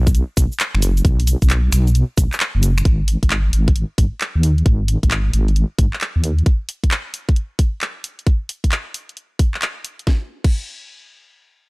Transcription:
0.00 0.23 B1 medium
0.07 kick loud
0.07 closed hi-hat soft
0.07 cabasa soft
0.15 closed hi-hat medium
0.15 cabasa soft
0.37 0.48 B1 medium
0.37 kick loud
0.37 open hi-hat loud
0.37 cabasa medium
0.52 cabasa soft
0.60 clap loud
0.60 closed hi-hat medium
0.60 cabasa soft
0.75 1.02 F#1 loud
0.75 finger snap medium
0.82 open hi-hat loud
0.82 cabasa medium
0.97 closed hi-hat soft
0.97 cabasa soft
1.05 1.36 B1 loud
1.05 kick loud
1.05 closed hi-hat medium
1.05 cabasa soft
1.20 open hi-hat medium
1.27 open hi-hat loud
1.27 cabasa medium
1.42 1.69 B1 loud
1.42 kick medium
1.42 closed hi-hat medium
1.42 cabasa soft
1.50 clap loud
1.50 closed hi-hat medium
1.50 cabasa soft
1.72 2.04 B1 loud
1.72 finger snap medium
1.72 open hi-hat loud
1.72 cabasa medium
1.87 closed hi-hat soft
1.87 cabasa soft
1.95 closed hi-hat medium
1.95 cabasa soft
2.17 2.28 B1 medium
2.17 kick loud
2.17 open hi-hat loud
2.17 cabasa medium
2.33 clap medium
2.33 cabasa soft
2.40 clap loud
2.40 closed hi-hat medium
2.40 cabasa soft
2.55 2.82 F#1 loud
2.63 open hi-hat loud
2.63 cabasa medium
2.78 finger snap medium
2.78 closed hi-hat soft
2.78 cabasa soft
2.85 3.16 G#1 loud
2.85 kick loud
2.85 closed hi-hat medium
3.08 open hi-hat loud
3.23 3.50 G#1 loud
3.23 kick medium
3.23 closed hi-hat medium
3.30 clap loud
3.30 closed hi-hat medium
3.53 3.84 G#1 medium
3.53 open hi-hat loud
3.68 kick loud
3.68 closed hi-hat soft
3.76 closed hi-hat medium
3.98 4.09 G#1 medium
3.98 kick loud
3.98 open hi-hat loud
4.21 clap loud
4.21 closed hi-hat medium
4.36 4.62 D#2 loud
4.43 open hi-hat loud
4.58 closed hi-hat soft
4.66 4.97 G#1 loud
4.66 kick loud
4.66 closed hi-hat medium
4.88 open hi-hat loud
5.03 5.30 G#1 loud
5.03 kick medium
5.03 closed hi-hat medium
5.11 clap loud
5.11 closed hi-hat medium
5.33 5.65 G#1 medium
5.33 open hi-hat loud
5.48 closed hi-hat soft
5.56 closed hi-hat medium
5.78 5.89 G#1 medium
5.78 kick loud
5.78 open hi-hat loud
5.93 clap medium
6.01 clap loud
6.01 closed hi-hat medium
6.16 6.43 D#2 loud
6.24 open hi-hat loud
6.39 closed hi-hat soft
6.46 kick loud
6.46 closed hi-hat medium
6.69 open hi-hat loud
6.84 kick medium
6.84 closed hi-hat medium
6.91 clap loud
6.91 closed hi-hat medium
7.14 open hi-hat loud
7.29 kick loud
7.29 closed hi-hat soft
7.36 closed hi-hat medium
7.59 kick loud
7.59 open hi-hat loud
7.81 clap loud
7.81 closed hi-hat medium
8.04 open hi-hat loud
8.19 closed hi-hat soft
8.27 kick loud
8.27 closed hi-hat medium
8.49 open hi-hat medium
8.64 kick medium
8.64 closed hi-hat medium
8.72 clap loud
8.72 closed hi-hat medium
8.94 open hi-hat medium
9.09 closed hi-hat soft
9.17 closed hi-hat medium
9.39 kick loud
9.39 open hi-hat loud
9.54 clap medium
9.62 clap loud
9.62 closed hi-hat medium
9.85 open hi-hat medium
9.99 closed hi-hat soft
10.07 kick loud
10.07 snare medium
10.44 kick loud
10.44 crash medium

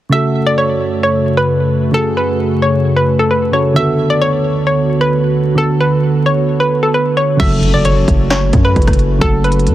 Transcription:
0.09 3.72 F#2 medium
0.09 1.89 C#3 medium
0.09 3.72 C#3 medium
0.09 1.90 A3 medium
0.09 3.72 A3 medium
0.09 3.72 F#4 medium
0.09 1.91 F#4 medium
0.09 0.44 E5 loud
0.15 1.92 A4 medium
0.46 0.57 D5 medium
0.58 1.01 C#5 medium
1.03 1.35 C#5 medium
1.37 1.91 B4 medium
1.92 3.49 C#3 medium
1.92 3.50 A3 medium
1.92 3.51 F#4 medium
1.92 2.16 A4 loud
1.97 3.52 G#4 medium
2.17 2.38 B4 medium
2.62 2.94 C#5 medium
2.97 3.18 B4 medium
3.19 3.30 A4 medium
3.31 3.52 B4 medium
3.52 3.75 C#3 soft
3.52 3.76 A3 soft
3.52 3.76 F#4 soft
3.52 3.77 A4 medium
3.52 3.75 C#5 medium
3.74 7.36 D2 medium
3.74 5.53 D3 medium
3.74 7.36 D3 medium
3.74 5.54 B3 medium
3.74 7.36 B3 medium
3.74 7.36 F#4 medium
3.74 5.55 F#4 medium
3.74 4.08 E5 loud
3.80 5.56 A4 medium
4.10 4.21 D5 medium
4.21 4.64 C#5 medium
4.67 4.99 C#5 medium
5.01 5.54 B4 medium
5.55 7.35 D3 medium
5.55 7.36 B3 medium
5.55 7.37 F#4 medium
5.55 5.79 A4 loud
5.61 7.38 A4 medium
5.80 6.02 B4 medium
6.26 6.58 C#5 medium
6.60 6.82 B4 medium
6.83 6.94 A4 medium
6.94 7.16 B4 medium
7.17 7.38 C#5 medium
7.37 8.05 F#1 loud
7.37 9.16 C#3 medium
7.37 9.17 F#3 medium
7.37 9.18 A3 medium
7.37 9.75 A3 medium
7.37 9.20 C#4 medium
7.37 9.75 F#4 medium
7.37 7.72 E5 loud
7.37 kick loud
7.37 closed hi-hat medium
7.37 crash loud
7.37 impact medium
7.41 9.19 F#4 medium
7.41 9.19 A4 medium
7.63 closed hi-hat medium
7.74 7.84 D5 medium
7.85 8.28 C#5 medium
7.85 closed hi-hat medium
8.08 8.52 F#1 loud
8.08 kick loud
8.08 closed hi-hat medium
8.30 8.63 C#5 medium
8.30 snare loud
8.30 clap loud
8.30 closed hi-hat medium
8.53 8.75 F#2 loud
8.53 kick loud
8.53 closed hi-hat medium
8.65 9.18 B4 medium
8.76 9.20 F#1 loud
8.76 kick loud
8.76 closed hi-hat soft
8.82 closed hi-hat medium
8.87 kick loud
8.87 cross-stick loud
8.87 closed hi-hat medium
8.93 closed hi-hat medium
8.99 closed hi-hat medium
9.19 9.69 F#1 loud
9.19 9.75 C#3 medium
9.19 9.75 F#3 medium
9.19 9.75 A3 medium
9.19 9.75 B3 medium
9.19 9.43 A4 loud
9.19 kick loud
9.19 closed hi-hat medium
9.23 9.75 F#4 medium
9.23 9.75 A4 medium
9.44 9.66 B4 medium
9.44 closed hi-hat medium
9.52 closed hi-hat medium
9.59 closed hi-hat medium
9.67 9.75 F#2 loud
9.67 closed hi-hat medium

